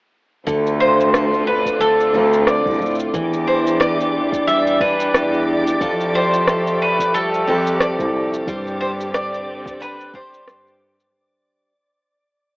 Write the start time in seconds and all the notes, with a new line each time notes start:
0.47 D2 D3 C4 F4 A4 D5 D6, kick, cabasa
0.67 cabasa
0.80 F4 C5
1.00 cabasa
1.14 A4, cross-stick, cabasa
1.34 cabasa
1.47 B4
1.66 kick, cabasa
1.81 A3 A4, cabasa
2.00 cabasa
2.14 D2 C4 F4 A4
2.33 cabasa
2.47 D5, cross-stick, cabasa
2.66 C2, kick, cabasa
2.71 cabasa
2.74 cabasa
2.78 A2, cabasa
2.82 cabasa
2.86 cabasa
2.90 cabasa
2.95 cabasa
3.00 cabasa
3.14 E2 E3 D4 G4, kick, cabasa
3.33 cabasa
3.47 E4 C5
3.67 cabasa
3.80 B4 D5, cross-stick, cabasa
4.01 cabasa
4.32 kick, cabasa
4.47 G3 E5, cabasa
4.67 cabasa
4.80 D4 E4 B4, kick
5.00 cabasa
5.14 E2, cross-stick, cabasa
5.34 cabasa
5.67 cabasa
5.80 F2 F3 A3 A4, kick, cabasa
6.00 cabasa
6.14 G4 C5
6.34 cabasa
6.47 A4, cross-stick, cabasa
6.67 cabasa
6.82 B4
6.99 kick, cabasa
7.14 G3 A4, cabasa
7.34 cabasa
7.47 F2 C4 G4 A4
7.67 cabasa
7.80 D5, cross-stick, cabasa
7.99 C2, kick, cabasa
8.14 C2
8.34 cabasa
8.47 G2 D3 G3 C4 C5, kick, cabasa
8.67 cabasa
8.81 G4 C5
9.01 cabasa
9.14 D5, cross-stick, cabasa
9.34 cabasa
9.66 kick, cabasa
9.80 D4 B4, cabasa
10.01 cabasa
10.14 D4 G4 C5, kick
10.34 cabasa
10.47 G2, cross-stick, cabasa
10.67 cabasa
11.00 cabasa